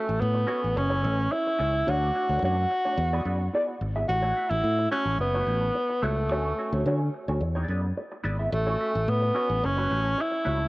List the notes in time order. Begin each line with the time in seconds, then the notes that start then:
Already playing: A3
0.07 A1, muted clean electric guitar stroke
0.21 A2 B3
0.34 muted clean electric guitar stroke
0.47 C#4 F#4 A4 C#5
0.62 A1, muted clean electric guitar stroke
0.75 F#1 C#4, muted clean electric guitar stroke
0.90 C#4 E4 A4 C#5
1.03 A1 C#4 E4 A4 C#5
1.18 muted clean electric guitar stroke
1.32 E4, muted clean electric guitar stroke
1.47 muted clean electric guitar stroke
1.59 C#2 C#4 E4 A4 C#5
1.73 muted clean electric guitar stroke
1.86 D2 A3 D4 F#4 C#5
2.14 A3 D4 F#4 C#5
2.29 D2 A3 D4 F#4 C#5
2.42 F#2 A3 D4 F#4 C#5
2.57 muted clean electric guitar stroke
2.71 muted clean electric guitar stroke
2.85 A3 D4 F#4 C#5
2.98 E2, muted clean electric guitar stroke
3.13 B3 E4 G#4 D5
3.25 F#2 B3 E4 G#4 D5
3.41 muted clean electric guitar stroke
3.54 B3 E4 G#4 D5
3.69 muted clean electric guitar stroke
3.81 G#1, muted clean electric guitar stroke
3.96 B3 E4 G#4 E5
4.08 A1 F#4, muted clean electric guitar stroke
4.22 A3 E4 F#4 C#5
4.36 A3 E4 F#4 E5
4.50 A1 E4, muted clean electric guitar stroke
4.64 A2
4.79 muted clean electric guitar stroke
4.91 A3 C#4 E4 F#4 C#5
5.05 A1, muted clean electric guitar stroke
5.19 F#1 B3, muted clean electric guitar stroke
5.35 A3 E4 F#4 C#5
5.47 A1 A3 E4 F#4 C#5
5.62 muted clean electric guitar stroke
5.75 muted clean electric guitar stroke
5.90 muted clean electric guitar stroke
6.02 C#2 A3 E4 F#4 C#5
6.18 muted clean electric guitar stroke
6.29 D2 C#4 F#4 A4 C#5
6.58 C#4 F#4 A4 C#5
6.73 D2 C#4 F#4 A4 C#5
6.86 D3 C#4 F#4 A4 C#5
7.01 muted clean electric guitar stroke
7.14 muted clean electric guitar stroke
7.28 D2 C#4 F#4 A4 C#5
7.41 E2, muted clean electric guitar stroke
7.55 B3 E4 G#4 D5
7.68 F#2 B3 E4 G#4 D5
7.84 muted clean electric guitar stroke
7.97 muted clean electric guitar stroke
8.12 muted clean electric guitar stroke
8.24 G#1 B3 E4 G#4 D5
8.39 B3 E4 G#4 E5
8.52 A1 A3, muted clean electric guitar stroke
8.67 C#4 F#4 A4 C#5
8.79 C#4 F#4 A4 E5
8.94 A1, muted clean electric guitar stroke
9.08 A2 B3
9.22 muted clean electric guitar stroke
9.34 C#4 F#4 A4 C#5
9.49 A1, muted clean electric guitar stroke
9.63 F#1 C#4, muted clean electric guitar stroke
9.77 A3 E4 F#4 C#5
9.90 A1 A3 E4 F#4 C#5
10.05 muted clean electric guitar stroke
10.17 E4, muted clean electric guitar stroke
10.32 muted clean electric guitar stroke
10.45 C#2 A3 E4 F#4 C#5
10.61 muted clean electric guitar stroke